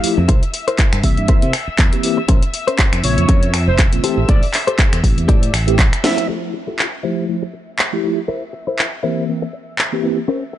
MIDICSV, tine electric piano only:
0, 0, Header, 1, 2, 480
1, 0, Start_track
1, 0, Key_signature, -1, "major"
1, 0, Tempo, 500000
1, 276, Time_signature, 4, 2, 24, 8
1, 10158, End_track
2, 0, Start_track
2, 0, Title_t, "Tine electric piano"
2, 0, Program_c, 0, 4
2, 30, Note_on_c, 0, 53, 85
2, 31, Note_on_c, 0, 57, 78
2, 35, Note_on_c, 0, 64, 82
2, 37, Note_on_c, 0, 67, 95
2, 162, Note_off_c, 0, 53, 0
2, 163, Note_off_c, 0, 57, 0
2, 165, Note_off_c, 0, 64, 0
2, 166, Note_off_c, 0, 67, 0
2, 989, Note_on_c, 0, 52, 81
2, 994, Note_on_c, 0, 58, 73
2, 994, Note_on_c, 0, 60, 74
2, 997, Note_on_c, 0, 67, 91
2, 1207, Note_off_c, 0, 52, 0
2, 1209, Note_off_c, 0, 58, 0
2, 1209, Note_off_c, 0, 60, 0
2, 1211, Note_off_c, 0, 67, 0
2, 1230, Note_on_c, 0, 52, 81
2, 1232, Note_on_c, 0, 58, 71
2, 1234, Note_on_c, 0, 60, 75
2, 1238, Note_on_c, 0, 70, 89
2, 1362, Note_off_c, 0, 52, 0
2, 1363, Note_off_c, 0, 58, 0
2, 1365, Note_off_c, 0, 60, 0
2, 1366, Note_off_c, 0, 70, 0
2, 1841, Note_on_c, 0, 52, 88
2, 1844, Note_on_c, 0, 58, 74
2, 1847, Note_on_c, 0, 60, 76
2, 1850, Note_on_c, 0, 67, 95
2, 1926, Note_off_c, 0, 52, 0
2, 1927, Note_off_c, 0, 58, 0
2, 1929, Note_off_c, 0, 60, 0
2, 1930, Note_off_c, 0, 67, 0
2, 1951, Note_on_c, 0, 52, 85
2, 1951, Note_on_c, 0, 58, 79
2, 1955, Note_on_c, 0, 60, 80
2, 1958, Note_on_c, 0, 67, 97
2, 2083, Note_off_c, 0, 52, 0
2, 2083, Note_off_c, 0, 58, 0
2, 2085, Note_off_c, 0, 60, 0
2, 2086, Note_off_c, 0, 67, 0
2, 2910, Note_on_c, 0, 49, 81
2, 2912, Note_on_c, 0, 58, 77
2, 2914, Note_on_c, 0, 60, 76
2, 2918, Note_on_c, 0, 65, 90
2, 3127, Note_off_c, 0, 49, 0
2, 3128, Note_off_c, 0, 58, 0
2, 3130, Note_off_c, 0, 60, 0
2, 3131, Note_off_c, 0, 65, 0
2, 3149, Note_on_c, 0, 49, 79
2, 3151, Note_on_c, 0, 58, 71
2, 3154, Note_on_c, 0, 60, 72
2, 3157, Note_on_c, 0, 70, 87
2, 3282, Note_off_c, 0, 49, 0
2, 3283, Note_off_c, 0, 58, 0
2, 3284, Note_off_c, 0, 60, 0
2, 3286, Note_off_c, 0, 70, 0
2, 3764, Note_on_c, 0, 49, 87
2, 3767, Note_on_c, 0, 58, 77
2, 3770, Note_on_c, 0, 60, 80
2, 3773, Note_on_c, 0, 65, 91
2, 3847, Note_off_c, 0, 49, 0
2, 3849, Note_off_c, 0, 58, 0
2, 3850, Note_off_c, 0, 60, 0
2, 3852, Note_off_c, 0, 65, 0
2, 3870, Note_on_c, 0, 52, 86
2, 3873, Note_on_c, 0, 57, 77
2, 3875, Note_on_c, 0, 60, 81
2, 3878, Note_on_c, 0, 67, 102
2, 4002, Note_off_c, 0, 52, 0
2, 4004, Note_off_c, 0, 57, 0
2, 4005, Note_off_c, 0, 60, 0
2, 4006, Note_off_c, 0, 67, 0
2, 4829, Note_on_c, 0, 52, 81
2, 4833, Note_on_c, 0, 57, 73
2, 4834, Note_on_c, 0, 60, 74
2, 4838, Note_on_c, 0, 67, 93
2, 5047, Note_off_c, 0, 52, 0
2, 5049, Note_off_c, 0, 57, 0
2, 5050, Note_off_c, 0, 60, 0
2, 5051, Note_off_c, 0, 67, 0
2, 5071, Note_on_c, 0, 52, 81
2, 5073, Note_on_c, 0, 57, 71
2, 5077, Note_on_c, 0, 60, 77
2, 5079, Note_on_c, 0, 72, 93
2, 5203, Note_off_c, 0, 52, 0
2, 5204, Note_off_c, 0, 57, 0
2, 5206, Note_off_c, 0, 60, 0
2, 5207, Note_off_c, 0, 72, 0
2, 5444, Note_on_c, 0, 52, 102
2, 5447, Note_on_c, 0, 57, 93
2, 5450, Note_on_c, 0, 60, 91
2, 5452, Note_on_c, 0, 67, 110
2, 5549, Note_off_c, 0, 52, 0
2, 5551, Note_off_c, 0, 57, 0
2, 5552, Note_off_c, 0, 60, 0
2, 5553, Note_off_c, 0, 67, 0
2, 5791, Note_on_c, 0, 53, 84
2, 5793, Note_on_c, 0, 57, 75
2, 5796, Note_on_c, 0, 64, 76
2, 5797, Note_on_c, 0, 72, 93
2, 6273, Note_off_c, 0, 53, 0
2, 6274, Note_off_c, 0, 57, 0
2, 6276, Note_off_c, 0, 64, 0
2, 6276, Note_off_c, 0, 72, 0
2, 6752, Note_on_c, 0, 53, 79
2, 6754, Note_on_c, 0, 57, 70
2, 6757, Note_on_c, 0, 64, 69
2, 6759, Note_on_c, 0, 67, 84
2, 6969, Note_off_c, 0, 53, 0
2, 6970, Note_off_c, 0, 57, 0
2, 6971, Note_off_c, 0, 64, 0
2, 6972, Note_off_c, 0, 67, 0
2, 6992, Note_on_c, 0, 53, 75
2, 6995, Note_on_c, 0, 57, 69
2, 6997, Note_on_c, 0, 64, 69
2, 6999, Note_on_c, 0, 72, 84
2, 7123, Note_off_c, 0, 53, 0
2, 7125, Note_off_c, 0, 57, 0
2, 7126, Note_off_c, 0, 64, 0
2, 7127, Note_off_c, 0, 72, 0
2, 7606, Note_on_c, 0, 53, 78
2, 7609, Note_on_c, 0, 57, 73
2, 7612, Note_on_c, 0, 64, 73
2, 7613, Note_on_c, 0, 67, 89
2, 7688, Note_off_c, 0, 53, 0
2, 7690, Note_off_c, 0, 57, 0
2, 7691, Note_off_c, 0, 64, 0
2, 7692, Note_off_c, 0, 67, 0
2, 7712, Note_on_c, 0, 53, 85
2, 7716, Note_on_c, 0, 57, 76
2, 7717, Note_on_c, 0, 64, 76
2, 7720, Note_on_c, 0, 67, 89
2, 7843, Note_off_c, 0, 53, 0
2, 7845, Note_off_c, 0, 57, 0
2, 7846, Note_off_c, 0, 64, 0
2, 7847, Note_off_c, 0, 67, 0
2, 8671, Note_on_c, 0, 52, 80
2, 8674, Note_on_c, 0, 58, 68
2, 8676, Note_on_c, 0, 60, 73
2, 8678, Note_on_c, 0, 67, 85
2, 8888, Note_off_c, 0, 52, 0
2, 8889, Note_off_c, 0, 58, 0
2, 8890, Note_off_c, 0, 60, 0
2, 8891, Note_off_c, 0, 67, 0
2, 8911, Note_on_c, 0, 52, 73
2, 8914, Note_on_c, 0, 58, 68
2, 8917, Note_on_c, 0, 60, 69
2, 8919, Note_on_c, 0, 70, 83
2, 9043, Note_off_c, 0, 52, 0
2, 9044, Note_off_c, 0, 58, 0
2, 9046, Note_off_c, 0, 60, 0
2, 9047, Note_off_c, 0, 70, 0
2, 9525, Note_on_c, 0, 52, 76
2, 9527, Note_on_c, 0, 58, 72
2, 9530, Note_on_c, 0, 60, 72
2, 9533, Note_on_c, 0, 67, 85
2, 9608, Note_off_c, 0, 52, 0
2, 9609, Note_off_c, 0, 58, 0
2, 9610, Note_off_c, 0, 60, 0
2, 9612, Note_off_c, 0, 67, 0
2, 9630, Note_on_c, 0, 52, 85
2, 9632, Note_on_c, 0, 58, 72
2, 9635, Note_on_c, 0, 60, 74
2, 9637, Note_on_c, 0, 67, 88
2, 9762, Note_off_c, 0, 52, 0
2, 9763, Note_off_c, 0, 58, 0
2, 9765, Note_off_c, 0, 60, 0
2, 9766, Note_off_c, 0, 67, 0
2, 10158, End_track
0, 0, End_of_file